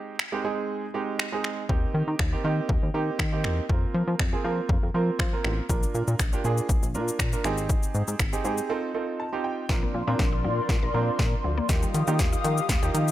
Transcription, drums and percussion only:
0.19 finger snap loud
1.19 finger snap loud
1.44 finger snap medium
1.69 kick loud
2.19 finger snap loud
2.19 kick loud
2.69 kick loud
3.19 finger snap loud
3.19 kick loud
3.44 finger snap medium
3.69 kick loud
4.19 finger snap loud
4.19 kick loud
4.69 kick loud
5.19 finger snap loud
5.19 kick loud
5.45 finger snap medium
5.70 kick loud
5.70 shaker medium
5.83 shaker medium
5.95 shaker soft
6.08 shaker medium
6.19 finger snap loud
6.19 kick loud
6.19 shaker medium
6.33 shaker soft
6.45 shaker medium
6.58 shaker medium
6.69 kick loud
6.69 shaker medium
6.83 shaker medium
6.95 shaker medium
7.08 shaker medium
7.19 finger snap loud
7.19 kick loud
7.19 shaker medium
7.33 shaker soft
7.44 finger snap medium
7.44 shaker soft
7.58 shaker medium
7.69 kick loud
7.69 shaker medium
7.83 shaker medium
7.95 shaker soft
8.08 shaker medium
8.19 finger snap loud
8.19 kick loud
8.19 shaker medium
8.33 shaker soft
8.45 shaker medium
8.58 shaker medium
9.69 kick loud
9.69 snare medium
10.19 kick loud
10.19 snare medium
10.69 kick loud
10.69 snare medium
11.19 kick loud
11.19 snare medium
11.69 kick loud
11.69 snare medium
11.69 closed hi-hat medium
11.69 shaker medium
11.83 shaker medium
11.94 closed hi-hat soft
11.94 shaker soft
12.07 shaker medium
12.19 kick loud
12.19 snare medium
12.19 closed hi-hat medium
12.19 shaker medium
12.33 shaker soft
12.45 closed hi-hat medium
12.45 shaker medium
12.58 shaker medium
12.69 kick loud
12.69 snare medium
12.69 closed hi-hat medium
12.69 shaker medium
12.83 shaker medium
12.95 closed hi-hat medium
12.95 shaker medium
13.08 shaker medium

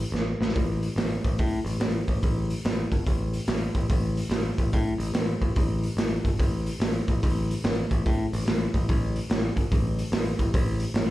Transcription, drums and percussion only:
0.15 snare medium
0.41 snare medium
0.49 snare medium
0.55 kick loud
0.55 open hi-hat medium
0.83 open hi-hat medium
0.98 snare loud
0.98 open hi-hat medium
1.24 kick medium
1.24 open hi-hat medium
1.39 kick loud
1.39 open hi-hat medium
1.66 open hi-hat medium
1.81 snare loud
1.81 open hi-hat medium
2.08 kick medium
2.08 open hi-hat medium
2.23 kick loud
2.23 open hi-hat medium
2.50 open hi-hat medium
2.65 snare loud
2.65 open hi-hat medium
2.92 kick medium
2.92 open hi-hat medium
3.07 kick loud
3.07 open hi-hat medium
3.34 open hi-hat medium
3.48 snare loud
3.48 open hi-hat medium
3.75 kick medium
3.75 open hi-hat medium
3.90 kick loud
3.90 open hi-hat medium
4.17 open hi-hat medium
4.31 snare loud
4.31 open hi-hat medium
4.58 kick medium
4.58 open hi-hat medium
4.73 kick loud
4.73 open hi-hat medium
5.00 open hi-hat medium
5.14 snare loud
5.14 open hi-hat medium
5.42 kick medium
5.42 open hi-hat soft
5.56 kick loud
5.56 open hi-hat medium
5.83 open hi-hat medium
5.98 snare loud
5.98 open hi-hat medium
6.25 kick medium
6.25 open hi-hat medium
6.39 kick loud
6.39 open hi-hat medium
6.66 open hi-hat medium
6.81 snare loud
6.81 open hi-hat medium
7.08 kick medium
7.08 open hi-hat medium
7.23 kick loud
7.23 open hi-hat medium
7.51 open hi-hat medium
7.64 snare loud
7.64 open hi-hat medium
7.91 kick medium
7.91 open hi-hat medium
8.06 kick loud
8.06 open hi-hat medium
8.33 open hi-hat medium
8.47 snare loud
8.47 open hi-hat medium
8.74 kick medium
8.74 open hi-hat medium
8.89 kick loud
8.89 open hi-hat medium
9.16 open hi-hat medium
9.31 snare loud
9.31 open hi-hat medium
9.57 kick medium
9.57 open hi-hat medium
9.72 kick loud
9.72 open hi-hat medium
9.99 open hi-hat medium
10.13 snare loud
10.13 open hi-hat medium
10.39 kick medium
10.39 open hi-hat medium
10.54 kick loud
10.54 open hi-hat medium
10.80 open hi-hat medium
10.95 snare loud
10.95 open hi-hat medium

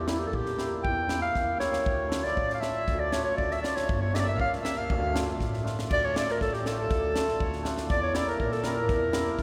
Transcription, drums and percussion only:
0.08 snare loud
0.33 kick medium
0.46 snare soft
0.59 snare medium
0.85 kick medium
1.09 snare medium
1.35 kick medium
1.35 snare soft
1.60 snare medium
1.73 snare medium
1.86 kick medium
2.12 snare loud
2.25 snare soft
2.37 kick medium
2.50 snare soft
2.62 snare medium
2.87 kick medium
2.87 snare soft
3.13 snare loud
3.38 kick medium
3.51 snare soft
3.64 snare medium
3.77 snare medium
3.89 kick medium
4.15 snare medium
4.40 kick medium
4.53 snare soft
4.65 snare medium
4.90 kick medium
5.16 snare loud
5.41 kick medium
5.41 snare soft
5.54 snare soft
5.66 snare soft
5.79 snare medium
5.91 kick medium
5.91 crash medium
6.16 snare loud
6.29 snare soft
6.41 kick medium
6.41 snare soft
6.54 snare soft
6.66 snare medium
6.90 kick medium
6.90 snare soft
7.16 snare loud
7.28 snare soft
7.40 kick medium
7.53 snare soft
7.65 snare medium
7.78 snare medium
7.90 kick medium
7.90 snare soft
8.15 snare medium
8.27 snare soft
8.40 kick medium
8.52 snare soft
8.64 snare medium
8.89 kick medium
8.89 snare soft
9.13 snare loud
9.38 kick medium
9.38 snare soft

